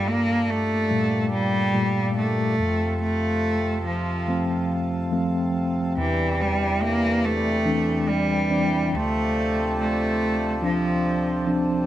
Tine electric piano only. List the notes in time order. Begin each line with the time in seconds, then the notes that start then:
Already playing: G2
0.91 A#2 G3 A3
1.74 A#2 G3 A3
2.59 F2
4.28 F3 A3 C4
5.12 F3 A3 C4
5.98 E2
7.65 E3 C4 D4
8.50 E3 C4 D4
8.93 D2
10.62 F3 C4 D4
11.47 F3 C4 D4